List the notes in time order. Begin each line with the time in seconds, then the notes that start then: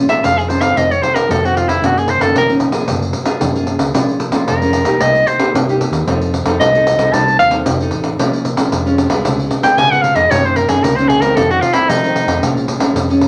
Already playing: A#2
0.08 A#1 G#3 C#4 F4 E5, pandeiro
0.22 F2 F5, pandeiro
0.38 G#4, pandeiro
0.48 G#3 C#4 F4 C5, pandeiro
0.60 F#1 D#3 A3 C4 F5, pandeiro
0.76 F1 F2 D#5, pandeiro
0.91 C#5, pandeiro
1.01 D#3 A3 C4 C5, pandeiro
1.15 A#4, pandeiro
1.29 F2 C3 A4, pandeiro
1.43 D#3 A3 C4 F#4, pandeiro
1.56 F4, pandeiro
1.67 F1 E4, pandeiro
1.82 F#1 F#2 D#3 A#3 C#4 F#4, pandeiro
1.97 G#4, pandeiro
2.08 C5, pandeiro
2.19 F#1 D#3 A#3 C#4 A4, pandeiro
2.35 A#1 F#2 A#4, pandeiro
2.48 D#3 A#3 C#4, pandeiro
2.60 pandeiro
2.72 A#1 A#3 F4 G#4, pandeiro
2.88 F#1 F#3, pandeiro
3.02 pandeiro
3.13 pandeiro
3.25 A#3 F4 G#4, pandeiro
3.41 F#2 C#3, pandeiro
3.55 A#3 F4 G#4, pandeiro
3.67 pandeiro
3.79 C#2, pandeiro
3.94 A#1 A#2 G#3 C#4 F4, pandeiro
4.09 pandeiro
4.20 pandeiro
4.32 A#1 G#3 C#4 F4, pandeiro
4.48 F2 A#4, pandeiro
4.61 G#3 C#4 F4, pandeiro
4.73 pandeiro
4.85 B1 A#3 D#4 G4, pandeiro
5.00 C2 C3 D#5, pandeiro
5.15 pandeiro
5.27 C5, pandeiro
5.38 A#3 D#4 G4, pandeiro
5.54 G2 C3, pandeiro
5.69 A#3 D#4 G4, pandeiro
5.81 pandeiro
5.90 D#2, pandeiro
6.06 F2 F3 C4 D#4 A4, pandeiro
6.21 pandeiro
6.34 pandeiro
6.45 F2 C4 D#4 A4, pandeiro
6.60 C2 C3 D#5, pandeiro
6.75 C4 D#4 A4, pandeiro
6.87 pandeiro
6.97 C2 C4 D#4 A4, pandeiro
7.13 C2 F3 C4 D#4 A4 A5, pandeiro
7.28 pandeiro
7.39 D#1 F5, pandeiro
7.51 C4 D#4 A4, pandeiro
7.66 F1 C3, pandeiro
7.80 C4 D#4 A4, pandeiro
7.91 A1, pandeiro
8.04 pandeiro
8.19 A#1 A#2 G#3 C#4 F4, pandeiro
8.33 pandeiro
8.45 pandeiro
8.57 A#1 G#3 C#4 F4, pandeiro
8.72 F2 F3, pandeiro
8.86 G#3 C#4 F4, pandeiro
8.98 pandeiro
9.10 C2 G#3 B3 F4, pandeiro
9.25 C#2 C#3, pandeiro
9.39 pandeiro
9.51 pandeiro
9.63 G#3 B3 F4 G5, pandeiro
9.77 G#2 C#3 G#5, pandeiro
9.91 G#3 B3 F4 F#5, pandeiro
10.02 F5, pandeiro
10.15 F2 D#5, pandeiro
10.30 F#2 D#3 A#3 C#4 C#5, pandeiro
10.45 C5, pandeiro
10.56 A#4, pandeiro
10.68 F#2 D#3 A#3 C#4 G#4, pandeiro
10.83 C#2 C#3 A#4, pandeiro
10.96 D#3 A#3 C#4 C5, pandeiro
11.08 G#4, pandeiro
11.20 C#2 D#3 A3 C4 A#4, pandeiro
11.36 F2 A4, pandeiro
11.51 F#4, pandeiro
11.61 F4, pandeiro
11.74 D#3 A3 C4 E4, pandeiro
11.89 C3 F3 D#4, pandeiro
12.03 D#3 A3 C4, pandeiro
12.16 pandeiro
12.26 F2, pandeiro
12.42 A#1 A#2 F3 G#3 C#4, pandeiro
12.57 pandeiro
12.68 pandeiro
12.79 A#1 F3 G#3 C#4, pandeiro
12.93 F2, pandeiro
13.09 F3 G#3 C#4, pandeiro
13.21 pandeiro